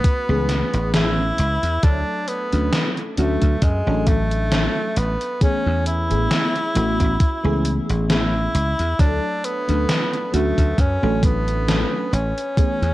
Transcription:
Already playing: B3
0.04 kick, closed hi-hat
0.28 C#2 E3 A3 B3 C#4 G#4
0.49 snare, closed hi-hat
0.74 A1, closed hi-hat
0.93 E3 A3 B3 C#4 E4 G#4, snare, closed hi-hat
1.38 C#2, closed hi-hat
1.63 E2, closed hi-hat
1.83 D2 F#3 A3 D4 A4 C#5, kick, closed hi-hat
2.28 B3, closed hi-hat
2.52 D2 F#3 A3 C#4 D4 A4, closed hi-hat
2.73 snare, closed hi-hat
2.97 closed hi-hat
3.17 D2 F#3 A3 C#4 D4 F#4, closed hi-hat
3.42 D2, kick, closed hi-hat
3.62 F#2 G#3, kick, closed hi-hat
3.86 A1 F#3 A3 C#4 D4 A4
4.07 A1 A3, kick, closed hi-hat
4.31 closed hi-hat
4.51 F#3 A3 C#4 D4 A4, snare, closed hi-hat
4.96 A1 B3, closed hi-hat
5.21 closed hi-hat
5.41 E3 A3 B3 C#4 G#4, muted slap bass stroke, kick, closed hi-hat
5.66 E2
5.86 E4, closed hi-hat
6.09 A1 E3 A3 B3 C#4 G#4, closed hi-hat
6.31 snare, closed hi-hat
6.56 closed hi-hat
6.74 A1 E3 A3 B3 C#4 F#4, closed hi-hat
7.00 A1, kick, closed hi-hat
7.20 kick, closed hi-hat
7.43 C#2 E3 A3 B3 C#4 G#4
7.65 closed hi-hat
7.89 A1, closed hi-hat
8.08 E3 A3 B3 C#4 E4 G#4, snare, closed hi-hat
8.55 C#2, closed hi-hat
8.79 E2, closed hi-hat
8.98 D2 F#3 A3 D4 A4 C#5, kick, closed hi-hat
9.44 B3, closed hi-hat
9.68 D2 F#3 A3 C#4 D4 A4, closed hi-hat
9.89 snare, closed hi-hat
10.14 closed hi-hat
10.32 D2 F#3 A3 C#4 D4 F#4, closed hi-hat
10.58 D2, kick, closed hi-hat
10.78 F#2 C#4, kick, closed hi-hat
11.02 A1 F#3 A3 C#4 D4 A4
11.23 A1 B3, kick, closed hi-hat
11.48 closed hi-hat
11.67 F#3 A3 C#4 D4 A4, snare, closed hi-hat
12.13 A1 C#4, closed hi-hat
12.38 closed hi-hat
12.57 E3 A3 B3 C#4 G#4, muted slap bass stroke, kick, closed hi-hat
12.82 E2, closed hi-hat

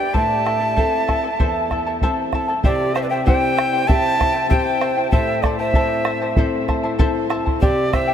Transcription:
Already playing: D5 G5 B5
0.00 B4 D5
0.13 A2 E4 A4 C5 E5 A5, bombo low
0.45 E4 A4 E5 A5, bombo rim
0.60 E4 A4 A5
0.76 C4 E4 A4 C5 E5 A5, bombo low
1.08 E4 A4 E5 A5, bombo rim, bombo low
1.24 E4 A4 A5
1.40 E2 E4 A4 C5 E5 A5, bombo low
1.71 E4 A4 E5 A5, bombo rim, bombo low
1.87 E4 A4 A5
2.02 C4 E4 A4 C5 E5 A5, bombo low
2.33 E4 A4 E5 A5, bombo rim, bombo low
2.48 E4 A4 A5
2.64 C3 E4 G4 C5 D5 E5 G5, bombo low
2.94 E4 C5 E5 G5, bombo rim
3.02 B4 D5
3.09 E4 C5 E5 G5
3.24 C4 E4 G4 C5 E5 G5, bombo low
3.56 E4 C5 E5 G5, bombo rim
3.72 E4 C5 G5
3.87 C4 E4 G4 C5 E5 G5 A5, bombo low
4.19 E4 C5 E5 G5, bombo rim, bombo low
4.34 E4 C5 G5
4.49 C4 E4 G4 C5 E5 G5, bombo low
4.81 E4 C5 E5 G5, bombo rim
4.97 E4 C5 G5
5.11 A2 E4 A4 C5 E5 A5, bombo low
5.42 E4 A4 C5 D5 E5 A5, bombo rim, bombo low
5.58 E4 C5 E5 A5
5.74 C4 E4 A4 C5 E5 A5, bombo low
6.05 E4 C5 E5 A5, bombo rim
6.22 E4 C5 A5
6.37 C4 E4 A4 C5 E5 A5, bombo low
6.68 E4 C5 E5 A5, bombo rim, bombo low
6.84 E4 C5 A5
6.99 C4 E4 A4 C5 E5 A5, bombo low
7.30 E4 C5 E5 A5, bombo rim
7.46 E4 C5 A5, bombo low
7.61 C3 E4 G4 C5 D5 E5 G5, bombo low
7.93 E4 C5 E5 G5, bombo rim, bombo low
8.07 E4 C5 G5

